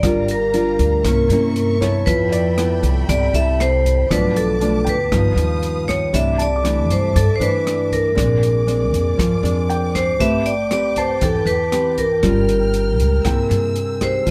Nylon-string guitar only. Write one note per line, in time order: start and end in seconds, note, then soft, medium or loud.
0.03 1.02 G3 medium
0.03 0.36 D4 medium
0.03 0.36 F4 medium
0.03 0.36 A#4 medium
0.54 1.02 D4 medium
0.54 1.02 F4 medium
0.54 1.03 A#4 medium
1.06 2.05 C3 medium
1.06 1.27 A#3 medium
1.06 1.27 C#4 medium
1.06 1.27 E4 medium
1.32 1.78 A#3 medium
1.32 1.78 C#4 medium
1.32 1.78 E4 medium
1.81 2.53 B3 medium
1.81 2.53 E4 medium
1.81 2.54 A4 medium
2.07 3.06 F3 medium
2.57 3.30 B3 medium
2.57 3.30 E4 medium
2.57 3.30 A4 medium
3.08 4.07 C3 medium
3.35 4.06 E4 medium
3.35 4.07 A4 medium
4.10 5.09 B2 medium
4.10 4.57 F3 medium
4.10 4.57 A3 medium
4.10 4.57 D4 medium
4.60 4.95 F3 soft
4.60 4.95 A3 medium
4.60 4.95 D4 medium
5.11 6.11 G2 medium
5.11 5.33 F3 medium
5.11 5.33 B3 medium
5.11 5.33 D#4 medium
5.37 6.10 F3 medium
5.37 6.09 B3 medium
5.37 6.10 D#4 medium
6.13 7.12 C3 medium
6.13 6.46 E3 medium
6.13 6.46 A3 medium
6.13 6.47 D4 medium
6.63 7.14 E3 soft
6.63 7.15 A3 medium
6.63 7.15 D4 medium
7.15 8.14 G2 medium
7.40 8.13 E3 medium
7.40 8.13 A3 medium
7.40 8.13 D4 medium
8.14 9.15 A#2 medium
8.14 8.63 G#3 medium
8.14 8.63 C4 medium
8.14 8.63 D4 medium
8.67 9.18 G#3 medium
8.67 9.18 C4 soft
8.67 9.18 D4 medium
9.17 10.17 F3 medium
9.43 10.16 G#3 medium
9.43 10.16 C4 medium
9.43 10.16 D4 medium
10.19 11.19 A3 medium
10.19 10.53 C4 medium
10.19 10.53 G4 medium
10.19 10.53 B4 medium
10.71 11.40 C4 medium
10.71 11.40 G4 medium
10.71 11.40 B4 medium
11.21 12.21 E3 medium
11.72 12.05 C4 medium
11.72 12.05 G4 medium
11.72 12.05 B4 medium
12.23 13.22 G3 medium
12.23 13.21 C#4 medium
12.23 13.21 F4 medium
12.23 13.21 A#4 medium
13.25 14.24 C3 medium
13.25 13.75 A#3 medium
13.25 13.76 E4 soft
13.25 13.76 G#4 medium
14.01 14.31 G#3 medium
14.01 14.31 D#4 medium
14.01 14.31 G4 medium
14.26 14.31 F3 medium